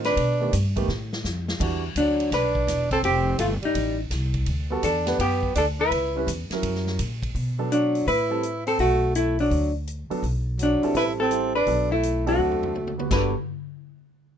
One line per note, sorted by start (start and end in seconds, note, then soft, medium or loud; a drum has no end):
0.00 0.15 A2 medium
0.00 0.13 D#3 medium
0.00 0.14 C4 medium
0.00 0.14 F4 medium
0.00 0.14 A#4 medium
0.04 0.53 D4 medium
0.04 0.53 B4 medium
0.04 snare soft
0.04 ride soft
0.17 0.51 B2 medium
0.17 kick soft
0.17 ride medium
0.40 0.51 D#3 medium
0.40 0.51 A3 soft
0.40 0.51 B3 medium
0.40 0.52 G4 medium
0.53 0.87 G2 medium
0.53 kick soft
0.53 hi-hat pedal soft
0.53 ride medium
0.76 0.87 D#3 medium
0.76 0.87 A3 medium
0.76 0.87 B3 medium
0.76 0.87 G4 medium
0.76 kick soft
0.76 ride soft
0.88 1.23 A2 medium
0.88 snare soft
1.13 snare medium
1.24 1.59 F2 medium
1.24 snare soft
1.24 hi-hat pedal soft
1.48 snare medium
1.60 1.95 E2 medium
1.60 1.81 E3 medium
1.60 1.81 G3 soft
1.60 1.81 D4 soft
1.60 1.81 F#4 medium
1.60 kick medium
1.60 crash medium
1.95 2.30 D2 medium
1.95 2.30 F#3 medium
1.95 2.30 D4 medium
1.95 kick soft
1.95 hi-hat pedal medium
1.95 ride medium
2.20 ride soft
2.31 2.66 B1 medium
2.31 2.88 D4 medium
2.31 2.88 B4 medium
2.31 kick soft
2.31 snare soft
2.31 ride medium
2.55 kick medium
2.67 3.02 E1 medium
2.67 kick soft
2.67 snare soft
2.67 hi-hat pedal soft
2.67 ride medium
2.91 3.04 C4 medium
2.91 2.98 A4 medium
2.91 kick soft
2.91 ride soft
3.03 3.38 F1 medium
3.03 3.38 C4 medium
3.03 3.41 G4 medium
3.03 kick soft
3.03 ride medium
3.38 3.61 G1 medium
3.38 3.54 A3 medium
3.38 3.46 F4 medium
3.38 kick soft
3.38 hi-hat pedal soft
3.38 ride medium
3.62 3.98 G3 medium
3.62 4.00 D#4 medium
3.62 muted upright bass stroke soft
3.62 ride soft
3.75 4.10 A1 medium
3.75 kick soft
3.75 ride medium
4.10 4.46 C2 medium
4.10 kick soft
4.10 snare soft
4.10 hi-hat pedal soft
4.10 ride medium
4.34 kick soft
4.34 ride soft
4.46 4.82 D2 medium
4.46 kick soft
4.46 ride soft
4.70 4.82 G3 medium
4.70 4.82 B3 medium
4.70 4.82 F#4 medium
4.70 4.82 A4 medium
4.83 5.18 E2 medium
4.83 5.17 D4 medium
4.83 5.21 A4 medium
4.83 kick soft
4.83 hi-hat pedal medium
4.83 ride medium
5.06 5.53 B3 medium
5.06 5.52 G4 medium
5.06 5.53 B4 medium
5.06 5.53 F#5 medium
5.06 snare soft
5.06 ride soft
5.19 5.54 F#2 medium
5.19 5.52 B3 medium
5.19 5.57 G4 medium
5.19 kick soft
5.19 ride medium
5.43 kick soft
5.55 5.90 D2 medium
5.55 5.66 D4 medium
5.55 5.64 A4 medium
5.55 kick soft
5.55 hi-hat pedal soft
5.55 ride medium
5.80 6.24 E4 medium
5.80 6.25 B4 medium
5.91 6.26 C#2 medium
5.91 kick soft
5.91 ride medium
6.15 6.26 G3 medium
6.15 6.27 C#4 medium
6.15 6.27 E4 medium
6.15 6.27 B4 medium
6.27 6.49 E2 medium
6.27 kick soft
6.27 hi-hat pedal medium
6.27 ride medium
6.50 6.97 F#3 medium
6.50 6.97 C#4 medium
6.50 6.97 E4 medium
6.50 6.97 A#4 medium
6.50 muted upright bass stroke soft
6.50 snare soft
6.50 ride soft
6.63 6.98 F#2 medium
6.63 kick soft
6.63 ride medium
6.75 snare soft
6.87 snare soft
6.99 7.34 A#2 medium
6.99 kick soft
6.99 hi-hat pedal soft
6.99 ride medium
7.23 kick soft
7.23 ride soft
7.35 8.03 B2 medium
7.35 kick soft
7.35 open hi-hat soft
7.58 7.69 F#3 medium
7.58 7.69 B3 soft
7.58 7.70 D4 medium
7.58 7.70 A4 medium
7.71 8.04 F#3 medium
7.71 8.05 D4 medium
7.71 closed hi-hat soft
7.95 open hi-hat soft
8.07 8.75 A2 medium
8.07 8.63 E4 medium
8.07 8.63 B4 medium
8.07 kick soft
8.07 open hi-hat soft
8.29 8.41 G3 medium
8.29 8.41 C4 medium
8.29 8.41 E4 medium
8.29 8.42 A4 medium
8.43 closed hi-hat soft
8.66 8.78 C4 medium
8.66 8.79 A4 medium
8.66 open hi-hat soft
8.79 9.47 B1 medium
8.79 9.13 A3 medium
8.79 9.15 F#4 medium
8.79 kick soft
8.79 open hi-hat soft
9.15 9.37 A3 medium
9.15 9.37 E4 medium
9.15 closed hi-hat soft
9.39 9.72 F#3 medium
9.39 9.73 D4 medium
9.39 open hi-hat soft
9.51 10.06 D2 medium
9.51 kick soft
9.51 open hi-hat soft
9.87 closed hi-hat soft
10.10 10.21 F#3 medium
10.10 10.22 B3 medium
10.10 10.21 D4 medium
10.10 10.22 A4 medium
10.10 muted upright bass stroke soft
10.10 open hi-hat soft
10.23 10.78 B1 medium
10.23 kick soft
10.23 open hi-hat soft
10.59 10.93 F#3 medium
10.59 10.94 D4 medium
10.59 closed hi-hat soft
10.82 11.28 G3 medium
10.82 11.29 C4 medium
10.82 11.28 E4 medium
10.82 11.29 A4 medium
10.82 open hi-hat soft
10.94 11.63 A1 medium
10.94 11.13 E4 medium
10.94 11.03 B4 loud
10.94 kick soft
10.94 open hi-hat soft
11.20 11.55 C4 medium
11.20 11.55 A4 medium
11.31 11.52 G3 medium
11.31 11.52 C4 soft
11.31 11.52 E4 soft
11.31 11.52 C5 medium
11.31 closed hi-hat soft
11.55 11.88 D4 medium
11.55 11.88 B4 medium
11.66 12.35 B1 medium
11.66 11.88 F#3 medium
11.66 11.88 B3 soft
11.66 11.88 D4 soft
11.66 11.88 A4 medium
11.66 kick soft
11.66 open hi-hat soft
11.92 12.24 A3 medium
11.92 12.28 E4 medium
12.03 closed hi-hat soft
12.26 12.72 F#3 medium
12.26 12.95 A3 medium
12.26 12.72 C4 medium
12.26 12.72 D4 medium
12.26 12.95 F#4 medium
12.26 12.72 A4 medium
12.26 open hi-hat soft
12.38 13.07 D2 medium
12.51 floor tom soft
12.63 floor tom medium
12.75 high tom medium
12.87 high tom medium
12.98 13.09 G3 soft
12.98 13.09 B3 soft
12.98 13.09 F#4 soft
12.98 13.10 B4 medium
12.98 high tom medium
13.10 13.33 G1 medium
13.10 13.32 D3 medium
13.10 13.32 G3 medium
13.10 13.32 B3 medium
13.10 13.32 F#4 medium
13.10 13.32 A4 medium
13.10 13.34 B4 medium
13.10 kick medium
13.10 snare medium
13.10 crash medium